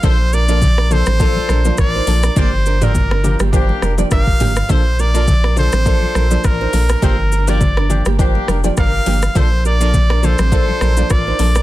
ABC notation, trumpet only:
X:1
M:4/4
L:1/16
Q:"Swing 16ths" 1/4=103
K:Bb
V:1 name="Trumpet"
c2 d4 c6 d4 | c3 B4 z4 z f4 | c2 d4 c6 B4 | B3 d4 z4 z f4 |
c2 d4 c6 d4 |]